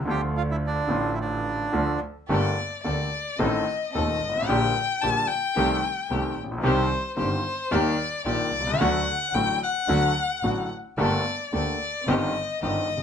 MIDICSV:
0, 0, Header, 1, 6, 480
1, 0, Start_track
1, 0, Key_signature, -2, "minor"
1, 0, Tempo, 557103
1, 50, Time_signature, 4, 2, 24, 8
1, 2930, Tempo, 539568
1, 7730, Tempo, 546448
1, 11447, End_track
2, 0, Start_track
2, 0, Title_t, "Violin"
2, 0, Program_c, 0, 40
2, 1979, Note_on_c, 0, 74, 66
2, 2422, Note_off_c, 0, 74, 0
2, 2440, Note_on_c, 0, 74, 67
2, 2920, Note_on_c, 0, 75, 70
2, 2933, Note_off_c, 0, 74, 0
2, 3393, Note_off_c, 0, 75, 0
2, 3398, Note_on_c, 0, 75, 75
2, 3882, Note_on_c, 0, 79, 83
2, 3896, Note_off_c, 0, 75, 0
2, 4368, Note_on_c, 0, 81, 89
2, 4381, Note_off_c, 0, 79, 0
2, 4602, Note_on_c, 0, 79, 83
2, 4615, Note_off_c, 0, 81, 0
2, 5566, Note_off_c, 0, 79, 0
2, 5815, Note_on_c, 0, 72, 72
2, 6258, Note_off_c, 0, 72, 0
2, 6288, Note_on_c, 0, 72, 75
2, 6768, Note_on_c, 0, 74, 75
2, 6781, Note_off_c, 0, 72, 0
2, 7248, Note_off_c, 0, 74, 0
2, 7258, Note_on_c, 0, 74, 86
2, 7725, Note_on_c, 0, 78, 88
2, 7738, Note_off_c, 0, 74, 0
2, 8211, Note_on_c, 0, 79, 89
2, 8224, Note_off_c, 0, 78, 0
2, 8449, Note_off_c, 0, 79, 0
2, 8466, Note_on_c, 0, 78, 87
2, 9387, Note_off_c, 0, 78, 0
2, 9657, Note_on_c, 0, 74, 72
2, 10102, Note_off_c, 0, 74, 0
2, 10146, Note_on_c, 0, 74, 73
2, 10616, Note_on_c, 0, 75, 74
2, 10629, Note_off_c, 0, 74, 0
2, 11095, Note_off_c, 0, 75, 0
2, 11101, Note_on_c, 0, 75, 78
2, 11447, Note_off_c, 0, 75, 0
2, 11447, End_track
3, 0, Start_track
3, 0, Title_t, "Bandoneon"
3, 0, Program_c, 1, 23
3, 85, Note_on_c, 1, 67, 74
3, 185, Note_off_c, 1, 67, 0
3, 319, Note_on_c, 1, 65, 68
3, 367, Note_off_c, 1, 65, 0
3, 440, Note_on_c, 1, 64, 62
3, 487, Note_off_c, 1, 64, 0
3, 574, Note_on_c, 1, 62, 67
3, 978, Note_on_c, 1, 64, 40
3, 985, Note_off_c, 1, 62, 0
3, 1026, Note_off_c, 1, 64, 0
3, 1044, Note_on_c, 1, 62, 61
3, 1725, Note_off_c, 1, 62, 0
3, 11447, End_track
4, 0, Start_track
4, 0, Title_t, "String section"
4, 0, Program_c, 2, 48
4, 1973, Note_on_c, 2, 58, 68
4, 1976, Note_on_c, 2, 67, 58
4, 1979, Note_on_c, 2, 69, 70
4, 2178, Note_off_c, 2, 58, 0
4, 2179, Note_off_c, 2, 67, 0
4, 2181, Note_off_c, 2, 69, 0
4, 2452, Note_on_c, 2, 69, 45
4, 2453, Note_on_c, 2, 58, 37
4, 2454, Note_on_c, 2, 67, 35
4, 2653, Note_off_c, 2, 69, 0
4, 2654, Note_off_c, 2, 58, 0
4, 2654, Note_off_c, 2, 67, 0
4, 2920, Note_on_c, 2, 60, 60
4, 2923, Note_on_c, 2, 63, 59
4, 2923, Note_on_c, 2, 69, 67
4, 3130, Note_off_c, 2, 60, 0
4, 3131, Note_off_c, 2, 63, 0
4, 3131, Note_off_c, 2, 69, 0
4, 3405, Note_on_c, 2, 63, 43
4, 3406, Note_on_c, 2, 60, 47
4, 3410, Note_on_c, 2, 69, 52
4, 3614, Note_off_c, 2, 60, 0
4, 3614, Note_off_c, 2, 63, 0
4, 3616, Note_off_c, 2, 69, 0
4, 3890, Note_on_c, 2, 58, 68
4, 3895, Note_on_c, 2, 67, 72
4, 3896, Note_on_c, 2, 62, 61
4, 4098, Note_off_c, 2, 58, 0
4, 4101, Note_off_c, 2, 62, 0
4, 4101, Note_off_c, 2, 67, 0
4, 4376, Note_on_c, 2, 62, 38
4, 4376, Note_on_c, 2, 67, 46
4, 4377, Note_on_c, 2, 58, 44
4, 4581, Note_off_c, 2, 58, 0
4, 4581, Note_off_c, 2, 62, 0
4, 4581, Note_off_c, 2, 67, 0
4, 4850, Note_on_c, 2, 57, 63
4, 4850, Note_on_c, 2, 60, 64
4, 4852, Note_on_c, 2, 67, 71
4, 5056, Note_off_c, 2, 57, 0
4, 5056, Note_off_c, 2, 60, 0
4, 5057, Note_off_c, 2, 67, 0
4, 5330, Note_on_c, 2, 60, 44
4, 5331, Note_on_c, 2, 57, 49
4, 5335, Note_on_c, 2, 67, 52
4, 5534, Note_off_c, 2, 57, 0
4, 5534, Note_off_c, 2, 60, 0
4, 5537, Note_off_c, 2, 67, 0
4, 5809, Note_on_c, 2, 60, 73
4, 5810, Note_on_c, 2, 63, 64
4, 5813, Note_on_c, 2, 67, 79
4, 6011, Note_off_c, 2, 60, 0
4, 6011, Note_off_c, 2, 63, 0
4, 6013, Note_off_c, 2, 67, 0
4, 6284, Note_on_c, 2, 60, 45
4, 6288, Note_on_c, 2, 63, 40
4, 6289, Note_on_c, 2, 67, 49
4, 6489, Note_off_c, 2, 60, 0
4, 6492, Note_off_c, 2, 63, 0
4, 6492, Note_off_c, 2, 67, 0
4, 6762, Note_on_c, 2, 58, 72
4, 6766, Note_on_c, 2, 63, 67
4, 6768, Note_on_c, 2, 67, 79
4, 6967, Note_off_c, 2, 58, 0
4, 6969, Note_off_c, 2, 63, 0
4, 6970, Note_off_c, 2, 67, 0
4, 7245, Note_on_c, 2, 58, 51
4, 7246, Note_on_c, 2, 63, 46
4, 7249, Note_on_c, 2, 67, 57
4, 7449, Note_off_c, 2, 58, 0
4, 7450, Note_off_c, 2, 63, 0
4, 7451, Note_off_c, 2, 67, 0
4, 7723, Note_on_c, 2, 57, 73
4, 7725, Note_on_c, 2, 62, 68
4, 7726, Note_on_c, 2, 66, 78
4, 7927, Note_off_c, 2, 57, 0
4, 7928, Note_off_c, 2, 62, 0
4, 7928, Note_off_c, 2, 66, 0
4, 8198, Note_on_c, 2, 57, 43
4, 8202, Note_on_c, 2, 62, 39
4, 8206, Note_on_c, 2, 66, 45
4, 8405, Note_off_c, 2, 57, 0
4, 8406, Note_off_c, 2, 62, 0
4, 8408, Note_off_c, 2, 66, 0
4, 8681, Note_on_c, 2, 57, 68
4, 8685, Note_on_c, 2, 62, 62
4, 8685, Note_on_c, 2, 66, 72
4, 8887, Note_off_c, 2, 57, 0
4, 8888, Note_off_c, 2, 66, 0
4, 8889, Note_off_c, 2, 62, 0
4, 9167, Note_on_c, 2, 57, 44
4, 9170, Note_on_c, 2, 66, 53
4, 9171, Note_on_c, 2, 62, 42
4, 9372, Note_off_c, 2, 57, 0
4, 9374, Note_off_c, 2, 62, 0
4, 9374, Note_off_c, 2, 66, 0
4, 9650, Note_on_c, 2, 58, 66
4, 9651, Note_on_c, 2, 67, 61
4, 9654, Note_on_c, 2, 69, 74
4, 9853, Note_off_c, 2, 58, 0
4, 9854, Note_off_c, 2, 67, 0
4, 9856, Note_off_c, 2, 69, 0
4, 10128, Note_on_c, 2, 58, 42
4, 10132, Note_on_c, 2, 67, 38
4, 10133, Note_on_c, 2, 69, 43
4, 10333, Note_off_c, 2, 58, 0
4, 10334, Note_off_c, 2, 67, 0
4, 10335, Note_off_c, 2, 69, 0
4, 10611, Note_on_c, 2, 60, 63
4, 10611, Note_on_c, 2, 63, 64
4, 10612, Note_on_c, 2, 67, 77
4, 10814, Note_off_c, 2, 60, 0
4, 10814, Note_off_c, 2, 63, 0
4, 10815, Note_off_c, 2, 67, 0
4, 11086, Note_on_c, 2, 60, 49
4, 11087, Note_on_c, 2, 67, 51
4, 11089, Note_on_c, 2, 63, 46
4, 11291, Note_off_c, 2, 60, 0
4, 11291, Note_off_c, 2, 67, 0
4, 11292, Note_off_c, 2, 63, 0
4, 11447, End_track
5, 0, Start_track
5, 0, Title_t, "Grand piano"
5, 0, Program_c, 3, 0
5, 45, Note_on_c, 3, 50, 65
5, 58, Note_on_c, 3, 53, 53
5, 61, Note_on_c, 3, 38, 65
5, 69, Note_on_c, 3, 57, 50
5, 76, Note_on_c, 3, 65, 63
5, 739, Note_off_c, 3, 53, 0
5, 740, Note_off_c, 3, 38, 0
5, 740, Note_off_c, 3, 50, 0
5, 744, Note_off_c, 3, 57, 0
5, 748, Note_off_c, 3, 65, 0
5, 755, Note_on_c, 3, 50, 56
5, 763, Note_on_c, 3, 53, 50
5, 766, Note_on_c, 3, 45, 61
5, 768, Note_on_c, 3, 33, 63
5, 775, Note_on_c, 3, 57, 52
5, 786, Note_on_c, 3, 65, 64
5, 1455, Note_off_c, 3, 50, 0
5, 1460, Note_off_c, 3, 53, 0
5, 1461, Note_off_c, 3, 45, 0
5, 1462, Note_off_c, 3, 33, 0
5, 1465, Note_off_c, 3, 57, 0
5, 1471, Note_off_c, 3, 65, 0
5, 1486, Note_on_c, 3, 50, 64
5, 1489, Note_on_c, 3, 53, 50
5, 1491, Note_on_c, 3, 38, 67
5, 1492, Note_on_c, 3, 57, 50
5, 1496, Note_on_c, 3, 65, 63
5, 1700, Note_off_c, 3, 38, 0
5, 1700, Note_off_c, 3, 50, 0
5, 1700, Note_off_c, 3, 53, 0
5, 1701, Note_off_c, 3, 57, 0
5, 1703, Note_off_c, 3, 65, 0
5, 1975, Note_on_c, 3, 57, 53
5, 1976, Note_on_c, 3, 58, 54
5, 1978, Note_on_c, 3, 31, 69
5, 1979, Note_on_c, 3, 50, 60
5, 1983, Note_on_c, 3, 43, 67
5, 1986, Note_on_c, 3, 67, 63
5, 2179, Note_off_c, 3, 57, 0
5, 2180, Note_off_c, 3, 58, 0
5, 2181, Note_off_c, 3, 31, 0
5, 2181, Note_off_c, 3, 50, 0
5, 2183, Note_off_c, 3, 43, 0
5, 2184, Note_off_c, 3, 67, 0
5, 2450, Note_on_c, 3, 50, 46
5, 2450, Note_on_c, 3, 57, 38
5, 2452, Note_on_c, 3, 38, 46
5, 2454, Note_on_c, 3, 58, 36
5, 2460, Note_on_c, 3, 67, 44
5, 2652, Note_off_c, 3, 57, 0
5, 2653, Note_off_c, 3, 38, 0
5, 2654, Note_off_c, 3, 50, 0
5, 2654, Note_off_c, 3, 58, 0
5, 2657, Note_off_c, 3, 67, 0
5, 2921, Note_on_c, 3, 57, 53
5, 2925, Note_on_c, 3, 51, 57
5, 2925, Note_on_c, 3, 69, 68
5, 2927, Note_on_c, 3, 33, 69
5, 2927, Note_on_c, 3, 60, 55
5, 2928, Note_on_c, 3, 45, 66
5, 3130, Note_off_c, 3, 57, 0
5, 3132, Note_off_c, 3, 51, 0
5, 3132, Note_off_c, 3, 69, 0
5, 3133, Note_off_c, 3, 33, 0
5, 3133, Note_off_c, 3, 60, 0
5, 3134, Note_off_c, 3, 45, 0
5, 3417, Note_on_c, 3, 39, 48
5, 3418, Note_on_c, 3, 57, 37
5, 3420, Note_on_c, 3, 27, 49
5, 3420, Note_on_c, 3, 51, 38
5, 3420, Note_on_c, 3, 60, 37
5, 3421, Note_on_c, 3, 69, 45
5, 3620, Note_off_c, 3, 39, 0
5, 3620, Note_off_c, 3, 57, 0
5, 3621, Note_off_c, 3, 27, 0
5, 3621, Note_off_c, 3, 51, 0
5, 3621, Note_off_c, 3, 60, 0
5, 3622, Note_off_c, 3, 69, 0
5, 3720, Note_on_c, 3, 31, 45
5, 3773, Note_on_c, 3, 32, 51
5, 3780, Note_off_c, 3, 31, 0
5, 3835, Note_on_c, 3, 33, 64
5, 3836, Note_off_c, 3, 32, 0
5, 3896, Note_on_c, 3, 50, 63
5, 3897, Note_on_c, 3, 34, 69
5, 3898, Note_off_c, 3, 33, 0
5, 3903, Note_on_c, 3, 67, 69
5, 3904, Note_on_c, 3, 58, 57
5, 3906, Note_on_c, 3, 55, 59
5, 3907, Note_on_c, 3, 46, 71
5, 4101, Note_off_c, 3, 50, 0
5, 4102, Note_off_c, 3, 34, 0
5, 4104, Note_off_c, 3, 67, 0
5, 4105, Note_off_c, 3, 58, 0
5, 4106, Note_off_c, 3, 55, 0
5, 4107, Note_off_c, 3, 46, 0
5, 4380, Note_on_c, 3, 50, 42
5, 4381, Note_on_c, 3, 34, 48
5, 4385, Note_on_c, 3, 46, 49
5, 4385, Note_on_c, 3, 55, 38
5, 4386, Note_on_c, 3, 58, 38
5, 4387, Note_on_c, 3, 67, 47
5, 4583, Note_off_c, 3, 34, 0
5, 4583, Note_off_c, 3, 50, 0
5, 4585, Note_off_c, 3, 46, 0
5, 4585, Note_off_c, 3, 55, 0
5, 4586, Note_off_c, 3, 58, 0
5, 4586, Note_off_c, 3, 67, 0
5, 4851, Note_on_c, 3, 51, 61
5, 4856, Note_on_c, 3, 48, 72
5, 4859, Note_on_c, 3, 36, 72
5, 4860, Note_on_c, 3, 60, 57
5, 4861, Note_on_c, 3, 57, 58
5, 4861, Note_on_c, 3, 67, 68
5, 5056, Note_off_c, 3, 51, 0
5, 5059, Note_off_c, 3, 48, 0
5, 5060, Note_off_c, 3, 36, 0
5, 5061, Note_off_c, 3, 57, 0
5, 5061, Note_off_c, 3, 60, 0
5, 5061, Note_off_c, 3, 67, 0
5, 5337, Note_on_c, 3, 48, 48
5, 5337, Note_on_c, 3, 57, 39
5, 5338, Note_on_c, 3, 51, 41
5, 5340, Note_on_c, 3, 36, 52
5, 5341, Note_on_c, 3, 60, 39
5, 5343, Note_on_c, 3, 67, 47
5, 5537, Note_off_c, 3, 48, 0
5, 5537, Note_off_c, 3, 57, 0
5, 5538, Note_off_c, 3, 51, 0
5, 5539, Note_off_c, 3, 36, 0
5, 5539, Note_off_c, 3, 60, 0
5, 5541, Note_off_c, 3, 67, 0
5, 5632, Note_on_c, 3, 33, 45
5, 5693, Note_off_c, 3, 33, 0
5, 5699, Note_on_c, 3, 34, 57
5, 5756, Note_off_c, 3, 34, 0
5, 5757, Note_on_c, 3, 35, 68
5, 5807, Note_on_c, 3, 51, 66
5, 5807, Note_on_c, 3, 67, 75
5, 5808, Note_on_c, 3, 48, 78
5, 5809, Note_on_c, 3, 36, 76
5, 5809, Note_on_c, 3, 55, 57
5, 5811, Note_on_c, 3, 60, 59
5, 5814, Note_off_c, 3, 35, 0
5, 6010, Note_off_c, 3, 48, 0
5, 6010, Note_off_c, 3, 51, 0
5, 6010, Note_off_c, 3, 55, 0
5, 6010, Note_off_c, 3, 67, 0
5, 6011, Note_off_c, 3, 36, 0
5, 6012, Note_off_c, 3, 60, 0
5, 6280, Note_on_c, 3, 31, 52
5, 6281, Note_on_c, 3, 55, 42
5, 6282, Note_on_c, 3, 51, 43
5, 6282, Note_on_c, 3, 60, 39
5, 6285, Note_on_c, 3, 43, 53
5, 6289, Note_on_c, 3, 67, 49
5, 6488, Note_off_c, 3, 31, 0
5, 6488, Note_off_c, 3, 51, 0
5, 6488, Note_off_c, 3, 55, 0
5, 6488, Note_off_c, 3, 60, 0
5, 6490, Note_off_c, 3, 43, 0
5, 6492, Note_off_c, 3, 67, 0
5, 6764, Note_on_c, 3, 55, 62
5, 6766, Note_on_c, 3, 51, 77
5, 6766, Note_on_c, 3, 58, 60
5, 6767, Note_on_c, 3, 39, 73
5, 6770, Note_on_c, 3, 67, 73
5, 6968, Note_off_c, 3, 55, 0
5, 6969, Note_off_c, 3, 58, 0
5, 6970, Note_off_c, 3, 39, 0
5, 6971, Note_off_c, 3, 51, 0
5, 6971, Note_off_c, 3, 67, 0
5, 7250, Note_on_c, 3, 46, 54
5, 7253, Note_on_c, 3, 58, 40
5, 7254, Note_on_c, 3, 34, 52
5, 7254, Note_on_c, 3, 55, 39
5, 7255, Note_on_c, 3, 51, 43
5, 7257, Note_on_c, 3, 67, 47
5, 7452, Note_off_c, 3, 46, 0
5, 7453, Note_off_c, 3, 58, 0
5, 7454, Note_off_c, 3, 34, 0
5, 7454, Note_off_c, 3, 55, 0
5, 7455, Note_off_c, 3, 51, 0
5, 7455, Note_off_c, 3, 67, 0
5, 7561, Note_on_c, 3, 35, 44
5, 7616, Note_off_c, 3, 35, 0
5, 7616, Note_on_c, 3, 36, 55
5, 7673, Note_off_c, 3, 36, 0
5, 7676, Note_on_c, 3, 37, 66
5, 7734, Note_off_c, 3, 37, 0
5, 7738, Note_on_c, 3, 50, 77
5, 7740, Note_on_c, 3, 38, 76
5, 7740, Note_on_c, 3, 54, 55
5, 7741, Note_on_c, 3, 57, 59
5, 7741, Note_on_c, 3, 66, 73
5, 7936, Note_off_c, 3, 38, 0
5, 7936, Note_off_c, 3, 54, 0
5, 7936, Note_off_c, 3, 57, 0
5, 7936, Note_off_c, 3, 66, 0
5, 7937, Note_off_c, 3, 50, 0
5, 8212, Note_on_c, 3, 45, 50
5, 8212, Note_on_c, 3, 54, 39
5, 8214, Note_on_c, 3, 33, 46
5, 8214, Note_on_c, 3, 66, 47
5, 8215, Note_on_c, 3, 50, 41
5, 8216, Note_on_c, 3, 57, 39
5, 8411, Note_off_c, 3, 54, 0
5, 8412, Note_off_c, 3, 33, 0
5, 8412, Note_off_c, 3, 45, 0
5, 8412, Note_off_c, 3, 66, 0
5, 8413, Note_off_c, 3, 50, 0
5, 8413, Note_off_c, 3, 57, 0
5, 8687, Note_on_c, 3, 50, 71
5, 8690, Note_on_c, 3, 38, 75
5, 8692, Note_on_c, 3, 54, 57
5, 8693, Note_on_c, 3, 57, 54
5, 8693, Note_on_c, 3, 66, 64
5, 8891, Note_off_c, 3, 38, 0
5, 8891, Note_off_c, 3, 50, 0
5, 8892, Note_off_c, 3, 54, 0
5, 8892, Note_off_c, 3, 66, 0
5, 8893, Note_off_c, 3, 57, 0
5, 9169, Note_on_c, 3, 50, 40
5, 9170, Note_on_c, 3, 33, 47
5, 9170, Note_on_c, 3, 45, 48
5, 9171, Note_on_c, 3, 57, 38
5, 9172, Note_on_c, 3, 54, 37
5, 9176, Note_on_c, 3, 66, 45
5, 9373, Note_off_c, 3, 50, 0
5, 9374, Note_off_c, 3, 33, 0
5, 9374, Note_off_c, 3, 45, 0
5, 9374, Note_off_c, 3, 57, 0
5, 9375, Note_off_c, 3, 54, 0
5, 9377, Note_off_c, 3, 66, 0
5, 9645, Note_on_c, 3, 58, 58
5, 9646, Note_on_c, 3, 31, 74
5, 9646, Note_on_c, 3, 43, 71
5, 9646, Note_on_c, 3, 50, 59
5, 9646, Note_on_c, 3, 57, 57
5, 9648, Note_on_c, 3, 67, 68
5, 9851, Note_off_c, 3, 31, 0
5, 9851, Note_off_c, 3, 43, 0
5, 9851, Note_off_c, 3, 50, 0
5, 9851, Note_off_c, 3, 58, 0
5, 9852, Note_off_c, 3, 57, 0
5, 9853, Note_off_c, 3, 67, 0
5, 10128, Note_on_c, 3, 50, 48
5, 10130, Note_on_c, 3, 57, 37
5, 10132, Note_on_c, 3, 58, 38
5, 10133, Note_on_c, 3, 38, 47
5, 10136, Note_on_c, 3, 67, 44
5, 10334, Note_off_c, 3, 57, 0
5, 10334, Note_off_c, 3, 58, 0
5, 10335, Note_off_c, 3, 38, 0
5, 10335, Note_off_c, 3, 50, 0
5, 10336, Note_off_c, 3, 67, 0
5, 10612, Note_on_c, 3, 51, 66
5, 10613, Note_on_c, 3, 55, 60
5, 10614, Note_on_c, 3, 31, 76
5, 10615, Note_on_c, 3, 60, 59
5, 10618, Note_on_c, 3, 67, 68
5, 10619, Note_on_c, 3, 43, 71
5, 10815, Note_off_c, 3, 51, 0
5, 10815, Note_off_c, 3, 55, 0
5, 10816, Note_off_c, 3, 31, 0
5, 10816, Note_off_c, 3, 60, 0
5, 10818, Note_off_c, 3, 43, 0
5, 10818, Note_off_c, 3, 67, 0
5, 11094, Note_on_c, 3, 51, 43
5, 11095, Note_on_c, 3, 60, 39
5, 11096, Note_on_c, 3, 55, 41
5, 11098, Note_on_c, 3, 31, 50
5, 11098, Note_on_c, 3, 43, 53
5, 11103, Note_on_c, 3, 67, 47
5, 11295, Note_off_c, 3, 51, 0
5, 11295, Note_off_c, 3, 60, 0
5, 11296, Note_off_c, 3, 55, 0
5, 11297, Note_off_c, 3, 31, 0
5, 11297, Note_off_c, 3, 43, 0
5, 11299, Note_off_c, 3, 67, 0
5, 11397, Note_on_c, 3, 30, 43
5, 11447, Note_off_c, 3, 30, 0
5, 11447, End_track
6, 0, Start_track
6, 0, Title_t, "Double bass"
6, 0, Program_c, 4, 43
6, 50, Note_on_c, 4, 38, 70
6, 735, Note_off_c, 4, 38, 0
6, 768, Note_on_c, 4, 33, 76
6, 1462, Note_off_c, 4, 33, 0
6, 1499, Note_on_c, 4, 38, 76
6, 1705, Note_off_c, 4, 38, 0
6, 1981, Note_on_c, 4, 31, 75
6, 2182, Note_off_c, 4, 31, 0
6, 2460, Note_on_c, 4, 38, 46
6, 2657, Note_off_c, 4, 38, 0
6, 2930, Note_on_c, 4, 33, 74
6, 3134, Note_off_c, 4, 33, 0
6, 3430, Note_on_c, 4, 39, 55
6, 3626, Note_off_c, 4, 39, 0
6, 3663, Note_on_c, 4, 32, 49
6, 3894, Note_off_c, 4, 32, 0
6, 3899, Note_on_c, 4, 34, 80
6, 4103, Note_off_c, 4, 34, 0
6, 4386, Note_on_c, 4, 34, 49
6, 4586, Note_off_c, 4, 34, 0
6, 4863, Note_on_c, 4, 36, 80
6, 5062, Note_off_c, 4, 36, 0
6, 5339, Note_on_c, 4, 36, 57
6, 5539, Note_off_c, 4, 36, 0
6, 5582, Note_on_c, 4, 34, 49
6, 5812, Note_off_c, 4, 34, 0
6, 5818, Note_on_c, 4, 36, 83
6, 6015, Note_off_c, 4, 36, 0
6, 6299, Note_on_c, 4, 31, 56
6, 6497, Note_off_c, 4, 31, 0
6, 6781, Note_on_c, 4, 39, 78
6, 6976, Note_off_c, 4, 39, 0
6, 7247, Note_on_c, 4, 34, 57
6, 7450, Note_off_c, 4, 34, 0
6, 7488, Note_on_c, 4, 36, 51
6, 7728, Note_off_c, 4, 36, 0
6, 7733, Note_on_c, 4, 38, 80
6, 7932, Note_off_c, 4, 38, 0
6, 8205, Note_on_c, 4, 33, 51
6, 8408, Note_off_c, 4, 33, 0
6, 8685, Note_on_c, 4, 38, 73
6, 8889, Note_off_c, 4, 38, 0
6, 9164, Note_on_c, 4, 33, 55
6, 9371, Note_off_c, 4, 33, 0
6, 9648, Note_on_c, 4, 31, 77
6, 9852, Note_off_c, 4, 31, 0
6, 10132, Note_on_c, 4, 38, 52
6, 10334, Note_off_c, 4, 38, 0
6, 10611, Note_on_c, 4, 31, 78
6, 10814, Note_off_c, 4, 31, 0
6, 11094, Note_on_c, 4, 31, 57
6, 11295, Note_off_c, 4, 31, 0
6, 11334, Note_on_c, 4, 31, 50
6, 11447, Note_off_c, 4, 31, 0
6, 11447, End_track
0, 0, End_of_file